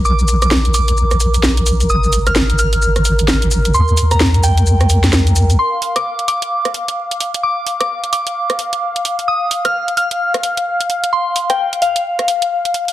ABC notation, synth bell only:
X:1
M:4/4
L:1/16
Q:"Swing 16ths" 1/4=130
K:Eb
V:1 name="Synth bell"
d'2 z d'2 z d'8- d' z | e'2 z f'2 z f'8- f' z | c'2 z b2 z g8- g z | c'2 z d'2 z d'8- d' z |
d'2 z d'2 z d'8- d' z | e'2 z f'2 z f'8- f' z | c'2 z g2 z f8- f z |]